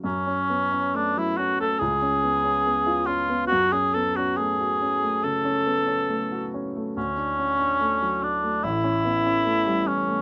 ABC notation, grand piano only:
X:1
M:4/4
L:1/16
Q:1/4=70
K:F#m
V:1 name="Grand piano"
F,, C B, C A, F, C A, C,, C B, C B, ^E C B, | F,, C B, C A, F C A, C, C B, C A, F C A, | D,, D C D A, F, D A, A,,, C B, C A, =G, C A, |]